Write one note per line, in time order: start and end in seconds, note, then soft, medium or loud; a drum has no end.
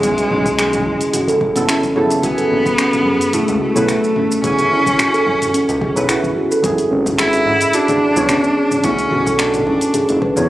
0.00 0.16 B1 loud
0.00 1.51 C#3 medium
0.00 1.52 F#3 medium
0.00 1.69 G#3 loud
0.00 1.52 B3 medium
0.00 kick loud
0.00 closed hi-hat medium
0.00 shaker medium
0.05 1.53 C#4 medium
0.05 1.53 E4 medium
0.18 closed hi-hat soft
0.18 shaker soft
0.30 0.82 B1 loud
0.30 0.57 C#4 medium
0.30 mid tom medium
0.46 kick loud
0.46 closed hi-hat soft
0.46 shaker medium
0.58 0.85 G#4 medium
0.58 finger snap loud
0.58 closed hi-hat medium
0.58 shaker medium
0.73 closed hi-hat soft
0.73 mid tom medium
0.73 shaker soft
0.86 0.98 F#1 medium
0.86 0.94 E4 medium
0.86 kick medium
1.01 closed hi-hat soft
1.01 shaker medium
1.13 1.27 F#4 medium
1.13 closed hi-hat medium
1.13 mid tom medium
1.13 shaker medium
1.27 1.38 F#1 medium
1.27 1.40 A4 medium
1.27 closed hi-hat soft
1.27 shaker soft
1.41 1.53 F#1 loud
1.41 kick loud
1.55 2.07 F#1 medium
1.55 1.67 C#3 medium
1.55 1.67 F#3 medium
1.55 1.67 B3 medium
1.55 1.67 E4 medium
1.55 1.67 A4 loud
1.55 closed hi-hat soft
1.55 mid tom medium
1.55 shaker medium
1.68 1.95 C#4 medium
1.68 finger snap loud
1.68 closed hi-hat medium
1.68 shaker medium
1.83 kick medium
1.83 closed hi-hat soft
1.83 shaker soft
1.95 2.20 C#3 loud
1.95 2.20 F#3 medium
1.95 2.20 B3 medium
1.95 2.21 E4 medium
1.95 2.22 G#4 medium
1.95 2.21 A4 loud
1.95 mid tom medium
2.10 2.21 F#1 medium
2.10 closed hi-hat soft
2.10 shaker medium
2.21 2.36 F#1 medium
2.21 3.71 C#3 medium
2.21 3.72 F#3 medium
2.21 3.35 B3 loud
2.21 3.72 B3 medium
2.21 3.73 E4 medium
2.21 2.37 F#4 medium
2.21 kick loud
2.21 closed hi-hat medium
2.21 shaker medium
2.25 3.73 G#5 medium
2.38 2.50 A4 medium
2.38 closed hi-hat soft
2.38 shaker soft
2.51 3.02 F#1 medium
2.51 mid tom medium
2.66 kick loud
2.66 shaker medium
2.78 3.05 C#4 medium
2.78 finger snap loud
2.78 closed hi-hat medium
2.78 shaker medium
2.93 closed hi-hat soft
2.93 mid tom medium
2.93 shaker soft
3.05 3.18 F#2 medium
3.05 3.32 G#4 medium
3.21 closed hi-hat soft
3.21 shaker medium
3.33 3.61 A3 medium
3.33 3.42 E4 medium
3.33 closed hi-hat medium
3.33 mid tom medium
3.33 shaker medium
3.48 3.59 C#2 medium
3.48 closed hi-hat soft
3.48 shaker soft
3.61 4.40 A3 loud
3.61 3.75 F#4 medium
3.75 3.86 B1 medium
3.75 3.94 C#3 medium
3.75 3.94 F#3 medium
3.75 3.95 B3 medium
3.75 3.95 E4 medium
3.75 3.88 A4 loud
3.75 3.95 B4 medium
3.75 mid tom medium
3.75 shaker medium
3.89 finger snap loud
3.89 closed hi-hat medium
3.89 shaker medium
4.04 shaker soft
4.16 4.43 C#4 medium
4.16 mid tom medium
4.32 shaker medium
4.42 4.56 F#1 medium
4.42 5.92 C#3 medium
4.42 5.92 F#3 medium
4.42 5.93 B3 medium
4.42 6.05 C#4 loud
4.42 5.93 E4 medium
4.42 4.70 G#4 medium
4.42 kick loud
4.42 closed hi-hat medium
4.42 shaker medium
4.46 5.94 G#5 medium
4.59 closed hi-hat soft
4.59 mid tom medium
4.59 shaker soft
4.71 5.23 F#1 loud
4.71 4.80 E4 medium
4.86 kick loud
4.86 shaker medium
4.99 5.13 F#4 medium
4.99 finger snap loud
4.99 closed hi-hat medium
4.99 mid tom medium
4.99 shaker medium
5.14 5.26 A4 loud
5.14 closed hi-hat soft
5.14 shaker soft
5.26 5.39 F#2 medium
5.26 kick medium
5.42 closed hi-hat soft
5.42 mid tom medium
5.42 shaker medium
5.54 5.80 C#4 medium
5.54 closed hi-hat medium
5.54 shaker medium
5.69 5.79 C#2 medium
5.69 closed hi-hat soft
5.69 shaker soft
5.81 6.08 G#4 medium
5.81 kick loud
5.81 mid tom medium
5.95 6.07 B1 medium
5.95 6.14 C#3 medium
5.95 6.14 F#3 medium
5.95 6.15 B3 medium
5.95 6.15 E4 medium
5.95 6.15 B4 medium
5.95 shaker medium
6.09 6.18 E4 medium
6.09 finger snap loud
6.09 closed hi-hat medium
6.09 shaker medium
6.24 kick medium
6.24 mid tom medium
6.24 shaker soft
6.36 6.50 F#4 medium
6.51 6.63 A4 loud
6.51 shaker medium
6.62 6.76 G#1 medium
6.62 8.12 D3 medium
6.62 8.12 F#3 medium
6.62 8.13 B3 medium
6.62 8.13 E4 medium
6.62 8.13 G#4 medium
6.62 kick loud
6.62 closed hi-hat medium
6.62 mid tom medium
6.62 shaker medium
6.78 closed hi-hat soft
6.78 shaker soft
6.91 7.43 G#1 loud
6.91 7.18 C#4 medium
7.06 kick loud
7.06 mid tom medium
7.06 shaker medium
7.18 7.76 E4 loud
7.18 7.45 G#4 medium
7.18 finger snap loud
7.18 closed hi-hat medium
7.18 shaker medium
7.33 closed hi-hat soft
7.33 shaker soft
7.45 7.59 G#2 medium
7.45 7.55 E4 medium
7.45 mid tom medium
7.61 closed hi-hat soft
7.61 shaker medium
7.73 8.86 D4 loud
7.73 7.88 F#4 medium
7.73 closed hi-hat medium
7.73 shaker medium
7.88 7.99 D1 medium
7.88 8.01 G#4 medium
7.88 closed hi-hat soft
7.88 mid tom medium
7.88 shaker soft
8.15 8.27 C#2 loud
8.15 8.35 C#3 medium
8.15 8.35 F#3 medium
8.15 8.35 B3 medium
8.15 8.35 E4 medium
8.15 8.36 C#5 medium
8.15 shaker medium
8.29 8.55 C#4 medium
8.29 finger snap loud
8.29 closed hi-hat medium
8.29 mid tom medium
8.29 shaker medium
8.44 shaker soft
8.57 8.83 G#4 medium
8.71 mid tom medium
8.71 shaker medium
8.82 8.97 B1 medium
8.82 10.32 D3 medium
8.82 10.33 F#3 medium
8.82 10.33 B3 medium
8.82 9.41 C#4 loud
8.82 8.93 E4 medium
8.82 10.34 E4 medium
8.82 kick loud
8.82 closed hi-hat medium
8.82 shaker medium
8.87 10.34 A3 medium
8.99 closed hi-hat soft
8.99 shaker soft
9.11 9.63 B1 medium
9.11 9.26 F#4 medium
9.11 mid tom medium
9.27 9.39 A4 loud
9.27 kick loud
9.27 shaker medium
9.39 10.22 D4 medium
9.39 finger snap loud
9.39 closed hi-hat medium
9.39 shaker medium
9.54 closed hi-hat soft
9.54 mid tom medium
9.54 shaker soft
9.67 9.79 F#1 medium
9.67 9.93 C#4 medium
9.67 kick medium
9.81 closed hi-hat soft
9.81 shaker medium
9.94 10.07 G#4 medium
9.94 closed hi-hat medium
9.94 mid tom medium
9.94 shaker medium
10.09 10.20 F#1 medium
10.09 closed hi-hat soft
10.09 shaker soft
10.22 10.35 B4 medium
10.22 kick loud
10.36 10.47 E2 loud
10.36 10.49 C#3 medium
10.36 10.49 F#3 medium
10.36 10.49 B3 medium
10.36 10.49 E4 medium
10.36 10.49 C#5 medium
10.36 mid tom medium
10.36 shaker medium